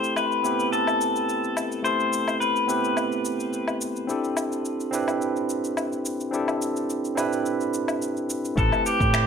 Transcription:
0.00 0.40 A3 medium
0.00 0.41 C4 medium
0.00 0.41 E4 medium
0.00 0.42 G4 medium
0.00 0.42 A4 medium
0.00 0.16 C5 medium
0.00 shaker soft
0.16 0.72 B4 medium
0.16 low woodblock medium
0.16 shaker soft
0.32 shaker soft
0.43 1.81 B3 medium
0.43 1.81 C4 medium
0.43 1.82 E4 medium
0.43 1.82 G4 medium
0.43 1.83 B4 medium
0.43 shaker medium
0.60 shaker soft
0.72 1.84 A4 medium
0.72 shaker soft
0.87 low woodblock medium
0.87 shaker soft
1.01 shaker medium
1.16 shaker soft
1.29 shaker soft
1.44 shaker soft
1.57 low woodblock medium
1.57 shaker medium
1.72 shaker soft
1.83 2.65 A3 medium
1.83 2.65 C4 medium
1.83 2.66 E4 medium
1.83 2.66 G4 medium
1.83 2.67 A4 medium
1.83 2.40 C5 medium
1.83 shaker soft
2.00 shaker soft
2.13 shaker medium
2.28 low woodblock medium
2.28 shaker soft
2.40 3.77 B4 medium
2.40 shaker soft
2.56 shaker soft
2.67 4.05 B3 medium
2.67 4.05 C4 medium
2.67 4.06 E4 medium
2.67 4.06 G4 medium
2.67 4.07 B4 medium
2.67 shaker medium
2.84 shaker soft
2.97 low woodblock medium
2.97 shaker soft
3.12 shaker soft
3.25 shaker medium
3.40 shaker soft
3.53 shaker soft
3.68 low woodblock medium
3.68 shaker soft
3.81 shaker medium
3.96 shaker soft
4.07 4.89 C4 medium
4.07 4.90 D4 medium
4.07 4.90 E4 medium
4.07 4.90 G4 medium
4.07 4.91 A4 medium
4.07 shaker soft
4.24 shaker soft
4.37 low woodblock medium
4.37 shaker medium
4.52 shaker soft
4.65 shaker soft
4.80 shaker soft
4.91 6.29 C4 medium
4.91 6.30 D4 medium
4.91 6.30 E4 medium
4.91 6.31 G4 medium
4.91 6.31 B4 medium
4.91 shaker medium
5.08 low woodblock medium
5.08 shaker soft
5.22 shaker soft
5.36 shaker soft
5.50 shaker medium
5.64 shaker soft
5.77 low woodblock medium
5.77 shaker soft
5.92 shaker soft
6.06 shaker medium
6.20 shaker soft
6.31 7.13 C4 medium
6.31 7.14 D4 medium
6.31 7.14 E4 medium
6.31 7.15 G4 medium
6.31 7.15 A4 medium
6.31 shaker soft
6.48 low woodblock medium
6.48 shaker soft
6.62 shaker medium
6.77 shaker soft
6.90 shaker soft
7.05 shaker soft
7.16 8.54 C4 medium
7.16 8.54 D4 medium
7.16 8.54 E4 medium
7.16 8.55 G4 medium
7.16 8.56 B4 medium
7.16 low woodblock medium
7.16 shaker medium
7.33 shaker soft
7.46 shaker soft
7.61 shaker soft
7.74 shaker medium
7.88 low woodblock medium
7.88 shaker soft
8.02 shaker soft
8.17 shaker soft
8.30 shaker medium
8.45 shaker soft
8.56 8.70 A1 medium
8.56 9.27 A3 medium
8.56 9.27 C4 medium
8.56 9.27 E4 medium
8.56 9.27 G4 medium
8.56 8.87 A4 medium
8.56 9.27 B4 medium
8.56 kick loud
8.56 shaker soft
8.72 low woodblock medium
8.72 shaker soft
8.86 9.27 G4 medium
8.86 shaker medium
9.00 9.27 A2 medium
9.00 kick loud
9.00 shaker soft
9.14 finger snap loud
9.14 low woodblock medium
9.14 shaker soft

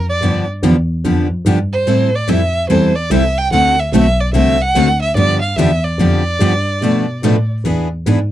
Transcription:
0.00 0.20 F2 medium
0.09 0.47 D5 medium
0.21 0.61 G2 medium
0.21 0.43 D3 medium
0.21 0.44 F3 medium
0.21 0.44 B3 medium
0.21 0.44 D4 medium
0.21 0.44 G4 medium
0.63 1.03 E2 medium
0.63 0.75 D3 medium
0.63 0.75 F3 medium
0.63 0.75 B3 loud
0.63 0.75 D4 medium
0.63 0.75 G4 loud
1.04 1.29 F2 medium
1.04 1.26 D3 medium
1.04 1.26 F3 medium
1.04 1.27 B3 medium
1.04 1.27 D4 medium
1.04 1.27 G4 medium
1.30 1.44 F2 soft
1.46 1.86 G2 medium
1.46 1.57 D3 medium
1.46 1.58 F3 medium
1.46 1.58 B3 medium
1.46 1.58 D4 medium
1.46 1.58 G4 medium
1.73 2.17 C5 medium
1.86 2.26 A2 medium
1.86 2.09 E3 medium
1.86 2.09 G3 medium
1.86 2.09 C4 medium
1.86 2.09 E4 medium
1.86 2.09 A4 medium
2.15 2.30 D5 medium
2.28 2.68 F2 medium
2.28 2.40 E3 medium
2.28 2.40 G3 medium
2.28 2.40 C4 medium
2.28 2.40 E4 medium
2.28 2.40 A4 medium
2.28 2.69 E5 loud
2.69 3.09 E2 medium
2.69 2.92 E3 medium
2.69 2.92 G3 medium
2.69 2.92 C4 medium
2.69 2.92 E4 medium
2.69 2.92 A4 medium
2.69 2.97 C5 medium
2.95 3.12 D5 medium
3.10 3.51 C2 medium
3.10 3.22 E3 medium
3.10 3.23 G3 medium
3.10 3.23 C4 medium
3.10 3.23 E4 medium
3.10 3.23 A4 medium
3.10 3.39 E5 loud
3.38 3.52 G5 loud
3.51 3.92 D2 medium
3.51 3.74 D3 medium
3.51 3.74 A3 medium
3.51 3.75 C4 medium
3.51 3.75 F#4 medium
3.51 3.75 A4 medium
3.51 3.81 F#5 loud
3.79 3.93 E5 medium
3.92 4.33 B1 medium
3.92 4.05 D3 medium
3.92 4.05 A3 medium
3.92 4.05 C4 loud
3.92 4.05 F#4 loud
3.92 4.05 A4 medium
3.92 4.22 E5 loud
4.20 4.33 D5 medium
4.34 4.74 C2 medium
4.34 4.56 D3 medium
4.34 4.57 A3 medium
4.34 4.57 C4 medium
4.34 4.57 F#4 medium
4.34 4.57 A4 medium
4.34 4.63 E5 loud
4.62 5.02 F#5 loud
4.75 5.15 D2 medium
4.75 4.87 D3 medium
4.75 4.87 A3 medium
4.75 4.87 C4 medium
4.75 4.87 F#4 medium
4.75 4.88 A4 medium
5.02 5.16 E5 medium
5.15 5.56 G2 medium
5.15 5.39 D3 medium
5.15 5.39 F3 medium
5.15 5.39 B3 medium
5.15 5.39 D4 medium
5.15 5.39 G4 medium
5.15 5.41 D5 loud
5.42 5.58 F5 medium
5.56 5.98 E2 medium
5.56 5.70 D3 medium
5.56 5.70 F3 medium
5.56 5.70 B3 medium
5.56 5.70 D4 loud
5.56 5.70 G4 medium
5.56 5.86 E5 medium
5.84 7.50 D5 medium
5.98 6.39 F2 medium
5.98 6.22 D3 medium
5.98 6.22 F3 medium
5.98 6.22 B3 medium
5.98 6.22 D4 medium
5.98 6.22 G4 medium
6.40 6.80 G2 medium
6.40 6.52 D3 medium
6.40 6.52 F3 medium
6.40 6.53 B3 medium
6.40 6.53 D4 medium
6.40 6.53 G4 medium
6.81 7.22 B2 medium
6.81 7.04 B2 medium
6.81 7.04 F3 medium
6.81 7.04 A3 medium
6.81 7.04 D4 medium
6.81 7.05 A4 medium
6.81 7.05 B4 medium
7.23 7.63 A2 medium
7.23 7.35 B2 medium
7.23 7.35 F3 medium
7.23 7.35 A3 medium
7.23 7.36 D4 loud
7.23 7.36 A4 medium
7.23 7.36 B4 medium
7.64 8.04 E2 medium
7.64 7.87 E3 medium
7.64 7.87 B3 medium
7.64 7.87 D4 medium
7.64 7.87 G#4 medium
7.64 7.87 B4 medium
8.06 8.32 G#2 medium
8.06 8.18 E3 medium
8.06 8.18 B3 medium
8.06 8.18 D4 medium
8.06 8.18 G#4 medium
8.06 8.19 B4 medium

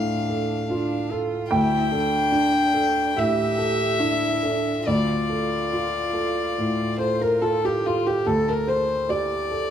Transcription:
0.00 1.51 D2 soft
0.00 0.54 A2 soft
0.00 0.69 D4 soft
0.00 0.70 F4 soft
0.00 0.29 A4 soft
0.00 1.06 F5 medium
0.00 1.11 F5 medium
0.29 0.94 A4 soft
0.70 1.13 D4 medium
0.70 1.35 F4 soft
1.11 1.53 F4 medium
1.11 1.52 A4 soft
1.51 3.13 D2 soft
1.51 1.94 E4 medium
1.51 3.13 G5 medium
1.51 3.20 G5 medium
1.92 3.17 D4 medium
1.92 2.58 A4 soft
2.32 3.00 D4 soft
2.74 3.42 A4 soft
3.17 3.85 A2 soft
3.17 4.03 G4 medium
3.17 4.82 E5 medium
3.17 4.89 E5 medium
3.58 4.26 A4 soft
4.00 4.68 D4 soft
4.00 4.46 E4 medium
4.43 4.86 D4 soft
4.43 4.85 A4 soft
4.87 6.53 D2 soft
4.87 7.81 F4 medium
4.87 6.95 D5 medium
4.87 6.99 D5 soft
5.29 5.98 A4 soft
5.73 6.40 F4 soft
6.14 6.81 A4 soft
6.58 7.25 A2 soft
6.98 7.40 A4 soft
6.98 7.18 C5 soft
6.98 7.23 C5 soft
7.21 7.40 A#4 soft
7.21 7.44 A#4 soft
7.41 7.85 F4 soft
7.41 7.61 A4 medium
7.41 7.67 A4 soft
7.65 7.84 G4 soft
7.65 7.88 G4 soft
7.85 8.08 F4 soft
7.85 8.05 F4 soft
7.85 8.25 A4 soft
8.07 8.29 G4 soft
8.07 8.26 G4 soft
8.26 9.70 D2 soft
8.26 8.46 A4 medium
8.26 8.50 A4 soft
8.48 8.70 A#4 soft
8.48 8.68 A#4 soft
8.67 9.34 A4 soft
8.67 9.06 C5 soft
8.67 9.12 C5 soft
9.09 9.70 G4 soft
9.09 9.70 D5 medium
9.09 9.70 D5 soft
9.51 9.70 A4 soft

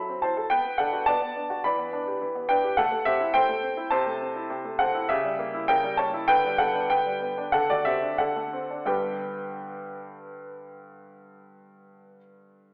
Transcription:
0.00 0.50 F#3 medium
0.00 0.19 E5 medium
0.00 0.23 B5 loud
0.09 0.31 C4 medium
0.22 0.45 E4 medium
0.22 0.49 C5 medium
0.22 0.50 A5 medium
0.37 0.51 A4 medium
0.50 0.64 B3 medium
0.50 0.77 B4 medium
0.50 0.79 G5 loud
0.65 0.88 B3 medium
0.78 1.02 D4 medium
0.78 1.06 A4 medium
0.78 1.07 F#5 loud
0.93 1.16 F#4 medium
1.06 1.20 B3 medium
1.06 1.61 D5 medium
1.06 1.64 A5 loud
1.22 1.45 B3 medium
1.36 1.59 D4 medium
1.50 1.65 F#4 medium
1.64 2.20 E3 medium
1.64 2.46 D5 medium
1.64 2.50 B5 loud
1.79 2.02 B3 medium
1.93 2.16 D4 medium
2.07 2.30 G4 medium
2.22 2.76 E3 medium
2.35 2.58 B3 medium
2.49 2.73 D4 medium
2.49 2.76 B4 medium
2.49 2.78 G5 loud
2.64 2.78 G4 medium
2.77 2.90 A3 medium
2.77 3.05 A4 medium
2.77 3.06 F#5 loud
2.92 3.15 A3 medium
3.05 3.29 C4 medium
3.05 3.33 G4 medium
3.05 3.34 E5 loud
3.20 3.43 E4 medium
3.34 3.47 A3 medium
3.34 3.88 C5 medium
3.34 3.92 G5 loud
3.49 3.72 A3 medium
3.63 3.86 C4 medium
3.77 3.92 E4 medium
3.91 4.49 C3 loud
3.91 4.76 C5 medium
3.91 4.79 A5 loud
4.06 4.30 A3 medium
4.21 4.45 C4 medium
4.36 4.59 E4 medium
4.50 5.08 C3 medium
4.65 4.89 A3 medium
4.79 5.04 C4 medium
4.79 5.08 A4 medium
4.79 5.09 F#5 loud
4.95 5.10 E4 medium
5.09 5.68 C#3 loud
5.09 5.65 G4 medium
5.09 5.68 E5 loud
5.24 5.48 G3 medium
5.39 5.63 A#3 medium
5.54 5.78 E4 medium
5.68 6.27 C#3 medium
5.68 5.97 A#4 medium
5.68 5.98 G5 loud
5.84 6.08 G3 medium
5.97 6.23 A#3 medium
5.97 6.27 C#5 medium
5.97 6.28 A5 loud
6.14 6.29 E4 medium
6.28 6.89 D3 medium
6.28 6.57 B4 medium
6.28 6.59 G5 loud
6.44 6.69 G3 medium
6.58 6.84 B3 medium
6.58 6.88 A4 medium
6.58 6.90 F#5 loud
6.75 7.00 D4 medium
6.90 7.52 D3 medium
6.90 7.50 B4 medium
6.90 7.53 G5 loud
7.06 7.31 G3 medium
7.22 7.47 B3 medium
7.38 7.54 D4 medium
7.52 8.18 D3 medium
7.52 7.68 A4 loud
7.52 7.69 F#5 loud
7.69 7.96 A3 medium
7.69 7.86 F#4 medium
7.69 7.86 D5 loud
7.85 8.12 C4 medium
7.85 8.17 G4 medium
7.85 8.19 E5 loud
8.02 8.29 D4 medium
8.18 8.84 D3 medium
8.18 8.84 A4 medium
8.18 8.87 F#5 medium
8.36 8.64 A3 medium
8.53 8.81 C4 medium
8.71 8.85 D4 medium
8.85 12.17 G2 medium
8.85 12.17 D3 medium
8.85 12.18 B3 medium
8.85 12.18 D4 medium
8.85 12.18 G4 medium
8.85 12.19 B4 medium
8.85 12.18 G5 medium

